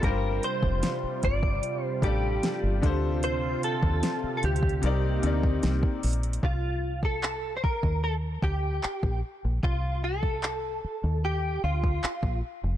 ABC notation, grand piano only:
X:1
M:4/4
L:1/8
Q:1/4=75
K:Gm
V:1 name="Grand piano"
[G,DFGc]3 z2 [G,DFAd]2 [D,DFAc]- | [D,DFAc]2 z2 [C,CEBd] [C,CEBd]2 z | z8 | z8 |]